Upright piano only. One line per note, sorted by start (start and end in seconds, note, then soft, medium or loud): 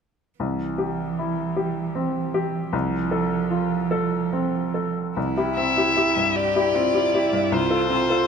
0.40 2.70 C2 soft
0.78 1.42 G4 soft
1.19 1.81 E4 soft
1.57 2.19 G4 soft
1.95 2.57 C4 soft
2.34 2.73 G4 soft
2.73 5.12 C2 soft
3.11 3.75 A4 soft
3.50 4.15 F4 soft
3.91 4.58 A4 soft
4.33 5.01 C4 soft
4.74 5.16 A4 soft
5.17 5.36 C2 soft
5.37 5.55 E4 soft
5.37 5.55 G4 soft
5.57 5.88 C4 soft
5.77 5.95 E4 soft
5.77 5.95 G4 soft
5.96 6.14 E4 soft
5.96 6.14 G4 soft
6.16 6.79 G2 soft
6.56 6.73 E4 soft
6.56 6.73 G4 soft
6.75 7.06 C4 soft
6.94 7.12 E4 soft
6.94 7.12 G4 soft
7.14 7.31 E4 soft
7.14 7.32 G4 soft
7.33 7.52 G2 soft
7.52 7.71 C2 soft
7.70 7.88 F4 soft
7.70 7.88 A4 soft
7.89 8.21 C4 soft
8.10 8.27 F4 soft
8.10 8.27 A4 soft